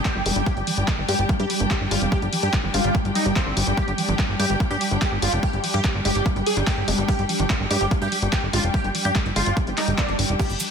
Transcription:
Already playing: G3 D4 G4 G5
0.05 G#3 G4, kick, clap, closed hi-hat
0.15 G1 G3
0.26 F1 G#3, open hi-hat
0.36 G1, closed hi-hat
0.46 G3 G4, kick, closed hi-hat
0.57 G1 G3, closed hi-hat
0.67 F3, open hi-hat
0.77 G1, closed hi-hat
0.88 G3, kick, clap, closed hi-hat
0.98 G1 G3
1.09 G2 G#3 G4, open hi-hat
1.19 G1
1.29 G3, kick, closed hi-hat
1.40 G2 G3 G4, closed hi-hat
1.50 G3, open hi-hat
1.60 G1, closed hi-hat
1.71 G#3 G4, kick, clap, closed hi-hat
1.81 G1 G3
1.91 G1 G#3 F4, open hi-hat
2.02 F1, closed hi-hat
2.12 G3 G4, kick, closed hi-hat
2.22 G1 G3, closed hi-hat
2.33 F3, open hi-hat
2.43 G2 G4, closed hi-hat
2.53 G3, kick, clap, closed hi-hat
2.64 G1 G3
2.74 G1 G#3 F4, open hi-hat
2.84 G1, closed hi-hat
2.95 G3, kick, closed hi-hat
3.05 G1 G3, closed hi-hat
3.15 G3 D#4, open hi-hat
3.26 G1 G3, closed hi-hat
3.36 G3 C4, kick, clap, closed hi-hat
3.46 G1 G4
3.57 G1 G3, open hi-hat
3.67 G1 G3
3.77 G3 G4, kick, closed hi-hat
3.88 G1 G3, closed hi-hat
3.98 F3, open hi-hat
4.08 G1 F3, closed hi-hat
4.19 G3, kick, clap, closed hi-hat
4.29 G1 G3
4.40 G2 G#3 G4, open hi-hat
4.50 G1, closed hi-hat
4.60 G3, kick, closed hi-hat
4.71 G2 G3 G4, closed hi-hat
4.81 G3, open hi-hat
4.91 G1, closed hi-hat
5.02 G#3 G4, kick, clap, closed hi-hat
5.12 G1 G3
5.22 G1 G#3 F4, open hi-hat
5.33 F1, closed hi-hat
5.43 G3 G4, kick, closed hi-hat
5.53 G1 G3, closed hi-hat
5.64 F3, open hi-hat
5.74 G2 F3 G4, closed hi-hat
5.84 G3, kick, clap, closed hi-hat
5.95 G1 G3
6.05 G1 G#3 G4, open hi-hat
6.15 G1, closed hi-hat
6.26 G3, kick, closed hi-hat
6.36 G1 G3, closed hi-hat
6.46 G3 G#4, open hi-hat
6.57 G1, closed hi-hat
6.67 G#3 G4, kick, clap, closed hi-hat
6.78 G1 G3
6.88 F1 G#3, open hi-hat
6.98 G1, closed hi-hat
7.08 G3 G4, kick, closed hi-hat
7.19 G1 G3, closed hi-hat
7.29 F3, open hi-hat
7.40 G1 F3, closed hi-hat
7.50 G3, kick, clap, closed hi-hat
7.60 G1 G3
7.71 G2 G#3 G4, open hi-hat
7.81 G1, closed hi-hat
7.91 G3, kick, closed hi-hat
8.02 G2 G3 G4, closed hi-hat
8.12 G3, open hi-hat
8.22 G1, closed hi-hat
8.33 G#3 G4, kick, clap, closed hi-hat
8.43 G1 G3
8.53 G1 G#3 F4, open hi-hat
8.64 F1, closed hi-hat
8.74 G3 G4, kick, closed hi-hat
8.84 G1 G3, closed hi-hat
8.95 F3, open hi-hat
9.05 G2 F3 G4, closed hi-hat
9.15 G3, kick, clap, closed hi-hat
9.26 G1 G3, closed hi-hat
9.36 G1 G#3 F4, open hi-hat
9.46 G1, closed hi-hat
9.57 G3, kick, closed hi-hat
9.67 G1 G3, closed hi-hat
9.77 G#3 D#4, clap, open hi-hat
9.88 G1, closed hi-hat
9.98 B3 D4, kick, clap, closed hi-hat
10.08 G1 G3, closed hi-hat
10.19 G1 G3, open hi-hat
10.29 F1 G3
10.40 G3 G4, kick, closed hi-hat, crash, maracas
10.50 G1 G3, closed hi-hat, maracas
10.60 F3, open hi-hat, maracas

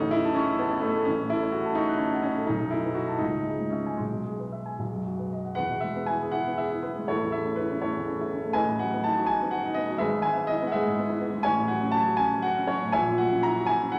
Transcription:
Already playing: A1 E2 C#4 D#4 A4
0.02 C#5
0.11 E4 E5
0.25 A5
0.34 C#4 C#6
0.49 E6
0.59 B3 A5
0.72 E5
0.81 A3 C#5
0.96 A4
1.05 A1 C#4
1.20 A2
1.30 E4 A4
1.43 C#5
1.52 F#4 F#5
1.66 A5
1.75 D#4 C#6
1.89 F#6
1.98 C#4 A5
2.13 F#5
2.22 C#4 C#5
2.38 A4
2.47 B1 D#4
2.60 F#2
2.71 E4 A4
2.85 B4
2.95 F#4 F#5
3.08 A5
3.18 C#2 D#4
3.34 G#2
3.46 G#4
3.60 G#2
3.70 C#4 E5
3.86 G#5
3.97 B1 G#3
4.13 B2
4.26 G#4
4.39 B4
4.52 E5
4.66 G#5
4.79 B1
4.93 F#2
5.05 F#4
5.19 B4
5.32 D#5
5.45 F#5
5.55 E2 B4 F#5
5.70 B2
5.81 G#3 E5
5.96 B3
6.06 E4 G#5
6.22 G#4
6.32 E4 F#5
6.47 B3
6.58 G#4 E5
6.72 E4
6.83 B3 B4
6.98 G#3
7.08 A1 E4 A4 C#5
7.22 E2
7.32 A3 E5
7.46 C#4
7.56 E4 B4
7.71 C#4
7.82 A3 E4 A4 C#5
7.96 E2
8.09 C#4
8.21 E4
8.33 C#4
8.44 A3
8.53 A1 B4 D#5 G#5
8.68 A2
8.79 F#3 F#5
8.93 B3
9.04 D#4 A5
9.17 F#4
9.26 D#4 G#5
9.42 B3
9.51 F#4 F#5
9.66 D#4
9.74 B3 D#5
9.89 F#3
9.98 G#1 G#4 B4 E5
10.12 G#2
10.22 G#3 G#5
10.33 B3 E5
10.47 E4 D#5
10.62 B3
10.67 F#5
10.72 G#3 G#4 B4 E5
10.85 G#2
10.99 B3
11.10 E4
11.21 B3
11.34 G#3
11.43 A1 C#5 G#5
11.57 A2
11.68 F#3 F#5
11.82 C#4
11.91 F#3 A5
12.06 F#4
12.17 C#4 G#5
12.32 F#3
12.42 F#4 F#5
12.58 C#4
12.67 F#3 C#5
12.82 A2
12.92 A#1 C#5 E5 G#5
13.08 A#2
13.18 F#3 F#5
13.32 C#4
13.43 E4 A#5
13.57 F#4
13.66 E4 G#5
13.82 C#4
13.92 F#4 F#5

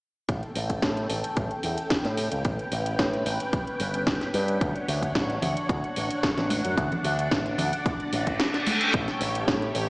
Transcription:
0.29 A1 C#4 A4 G5, kick, closed hi-hat
0.43 closed hi-hat
0.55 A1, open hi-hat
0.70 kick, closed hi-hat
0.82 A2, kick, snare, closed hi-hat
0.97 closed hi-hat
1.09 A1, open hi-hat
1.24 closed hi-hat
1.37 A1, kick, closed hi-hat
1.51 closed hi-hat
1.63 E2, open hi-hat
1.78 closed hi-hat
1.90 kick, snare, closed hi-hat
2.05 A2, snare, closed hi-hat
2.17 open hi-hat
2.32 C#2, closed hi-hat
2.45 A1 B4, kick, closed hi-hat
2.59 closed hi-hat
2.72 A1, open hi-hat
2.86 closed hi-hat
2.99 A2, kick, snare, closed hi-hat
3.13 closed hi-hat
3.25 A1, open hi-hat
3.40 closed hi-hat
3.53 kick, closed hi-hat
3.67 closed hi-hat
3.80 G1, open hi-hat
3.94 closed hi-hat
4.07 kick, snare, closed hi-hat
4.21 snare, closed hi-hat
4.34 G2, open hi-hat
4.48 closed hi-hat
4.61 D2 D4 C#5 F#5, kick, closed hi-hat
4.76 closed hi-hat
4.88 D2, open hi-hat
5.02 kick, closed hi-hat
5.15 A1, kick, snare, closed hi-hat
5.30 closed hi-hat
5.42 D2, open hi-hat, low conga
5.57 closed hi-hat
5.69 D2, kick, closed hi-hat
5.84 closed hi-hat
5.96 A1, open hi-hat
6.11 closed hi-hat
6.23 kick, snare, closed hi-hat
6.37 A1, snare, closed hi-hat, low conga
6.50 open hi-hat, high conga
6.65 F#2, closed hi-hat
6.77 D2 D5, kick, closed hi-hat
6.92 closed hi-hat, low conga
7.04 D2, open hi-hat
7.19 closed hi-hat
7.31 A1, kick, snare, closed hi-hat
7.46 closed hi-hat
7.58 D2, open hi-hat, low conga
7.73 closed hi-hat
7.86 kick, closed hi-hat, reverse cymbal
8.00 closed hi-hat
8.13 A1, open hi-hat
8.27 kick, closed hi-hat
8.40 snare, closed hi-hat
8.54 snare, closed hi-hat
8.66 C#4 A4 G5, open hi-hat, high conga
8.81 closed hi-hat
8.93 A1 A3 G4 C#5, kick, closed hi-hat
9.08 snare, closed hi-hat
9.20 A1, open hi-hat
9.35 closed hi-hat
9.48 A2, kick, snare, closed hi-hat
9.62 closed hi-hat
9.75 A1, open hi-hat

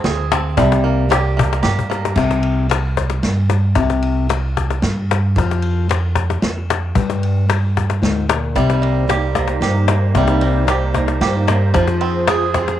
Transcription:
Already playing: F3 C4
0.04 D2 G#4, muted nylon-string guitar stroke, snare, ride
0.19 cajon slap
0.32 C4, cajon slap
0.57 C2 C3 G3, kick, cajon bass, ride
0.72 cajon slap
0.84 A#3
1.09 G4, muted nylon-string guitar stroke, cajon slap, ride
1.25 cajon slap
1.37 A#3, cajon bass
1.53 cajon slap
1.63 G2 G4, muted nylon-string guitar stroke, cajon bass, snare, ride
1.79 cajon bass
1.90 A#3, cajon slap
2.05 cajon slap
2.16 C2 C3, kick, cajon bass, cajon slap, crash
2.31 cajon slap
2.43 ride
2.69 muted nylon-string guitar stroke, cajon slap, ride
2.97 cajon bass, cajon slap
3.10 cajon slap
3.23 G2, muted nylon-string guitar stroke, snare, ride
3.37 cajon slap
3.50 cajon slap
3.75 C2 C3, cajon bass, kick, cajon slap, ride
3.90 cajon slap
4.02 ride
4.29 muted nylon-string guitar stroke, cajon slap, ride
4.57 cajon bass, cajon slap
4.70 cajon slap
4.82 G2, muted nylon-string guitar stroke, snare, ride
4.97 cajon slap
5.11 cajon slap
5.36 F2 F3, kick, cajon bass, cajon slap, ride
5.51 cajon slap
5.62 ride
5.89 muted nylon-string guitar stroke, cajon slap, ride
6.15 cajon bass, cajon slap
6.30 cajon slap
6.42 F2, muted nylon-string guitar stroke, snare, ride
6.58 cajon slap
6.70 cajon slap
6.95 G2, cajon bass, kick, ride
7.10 cajon slap
7.23 ride
7.37 cajon slap
7.49 muted nylon-string guitar stroke, cajon slap, ride
7.62 cajon slap
7.77 cajon bass, cajon slap
7.90 cajon slap
8.02 D2 G#2, snare, ride
8.17 cajon slap
8.29 A#2, cajon slap
8.44 cajon slap
8.55 C2 C3 G3 A#3 D#4 C5, kick, cajon bass, cajon slap, ride
8.70 cajon slap
8.82 A#3, ride
9.08 G4, muted nylon-string guitar stroke, cajon slap, ride
9.35 A#3, cajon bass, cajon slap
9.48 cajon slap
9.61 G2 G4, muted nylon-string guitar stroke, snare, ride
9.76 cajon slap
9.88 A#3, cajon slap
10.15 C2 C3 G3, cajon bass, kick, cajon slap, ride
10.28 cajon slap
10.41 A#3, ride
10.67 G4, muted nylon-string guitar stroke, cajon slap, ride
10.94 A#3, cajon bass, cajon slap
11.08 cajon slap
11.21 G2 G4, muted nylon-string guitar stroke, snare, ride
11.35 cajon slap
11.47 A#3, cajon slap
11.73 F2 F3 F4 G#4, cajon bass, kick, cajon slap, ride
11.88 cajon slap
12.01 C4, ride
12.28 G#4, muted nylon-string guitar stroke, cajon slap, ride
12.54 C4, cajon bass, cajon slap
12.68 cajon slap

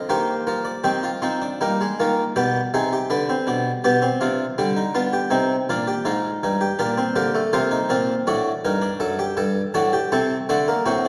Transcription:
0.09 D#3 A#3 G4 C5
0.47 F3 A#4
0.65 D5
0.84 D#3 C4 G4 D#5
1.03 F4
1.22 F3 C4 D#4
1.42 D4
1.61 G3 A#3 D#4
1.81 G#3
2.00 D#3 A#3 F4
2.36 B2 B3 G4 D5
2.74 C3 D#4 G#4
2.93 G4
3.10 D3 D4 B4
3.29 C4
3.47 B2 D4
3.84 B2 B3 G4 D5
4.02 C4
4.21 C3 D4 F4
4.58 D3 G3 D4
4.76 D#4
4.95 B3 F4
5.13 G4
5.30 C3 C4 D#4
5.69 A#2 D4 F4
5.87 G4
6.05 G#2 D#4 F4
6.43 G2 D#4
6.61 G4
6.79 A#2 D4 G4 A#4
6.98 C4
7.16 D3 A#3 G4
7.35 A3
7.53 C3 A#3 F4 C5
7.71 D#4
7.89 A#2 C4 F4
8.27 A2 D4 F#4 D5
8.65 G2 D#4 A#4
8.82 D4
9.00 F#2 A4
9.19 G4
9.37 G2 A4
9.74 A2 D4 F#4 A5
9.93 G4
10.12 C3 C4 A4
10.49 D3 A3 D4 F#5
10.68 A#3
10.86 A2 C4 F#4

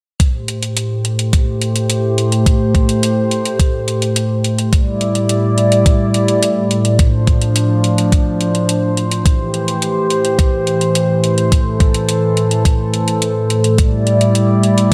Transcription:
0.20 A2 A3 G4 C5, kick, closed hi-hat
0.48 closed hi-hat
0.63 closed hi-hat
0.77 closed hi-hat
1.05 closed hi-hat
1.19 closed hi-hat
1.33 kick, closed hi-hat
1.61 closed hi-hat
1.76 closed hi-hat
1.90 closed hi-hat
2.18 closed hi-hat
2.32 closed hi-hat
2.46 kick, closed hi-hat
2.75 kick, closed hi-hat
2.89 closed hi-hat
3.03 closed hi-hat
3.31 closed hi-hat
3.45 closed hi-hat
3.60 kick, closed hi-hat
3.88 closed hi-hat
4.02 closed hi-hat
4.16 closed hi-hat
4.44 closed hi-hat
4.59 closed hi-hat
4.73 A2 G3 E4 D5, kick, closed hi-hat
5.01 closed hi-hat
5.15 closed hi-hat
5.29 closed hi-hat
5.58 closed hi-hat
5.72 closed hi-hat
5.86 kick, closed hi-hat
6.14 closed hi-hat
6.28 closed hi-hat
6.43 closed hi-hat
6.71 closed hi-hat
6.85 closed hi-hat
6.99 F3 D4 C5, kick, closed hi-hat
7.27 kick, closed hi-hat
7.42 closed hi-hat
7.56 closed hi-hat
7.84 closed hi-hat
7.98 closed hi-hat
8.12 kick, closed hi-hat
8.41 closed hi-hat
8.55 closed hi-hat
8.69 closed hi-hat
8.97 closed hi-hat
9.11 closed hi-hat
9.25 A2 E3 G4, kick, closed hi-hat
9.54 closed hi-hat
9.68 closed hi-hat
9.82 closed hi-hat
10.10 closed hi-hat
10.25 closed hi-hat
10.39 kick, closed hi-hat
10.67 closed hi-hat
10.81 closed hi-hat
10.95 closed hi-hat
11.24 closed hi-hat
11.38 closed hi-hat
11.52 A4, kick, closed hi-hat
11.80 kick, closed hi-hat
11.94 closed hi-hat
12.09 closed hi-hat
12.37 closed hi-hat
12.51 closed hi-hat
12.65 kick, closed hi-hat
12.94 closed hi-hat
13.08 closed hi-hat
13.22 closed hi-hat
13.50 closed hi-hat
13.64 closed hi-hat
13.78 G3 E4 D5, kick, closed hi-hat
14.07 closed hi-hat
14.21 closed hi-hat
14.35 closed hi-hat
14.63 closed hi-hat
14.78 closed hi-hat

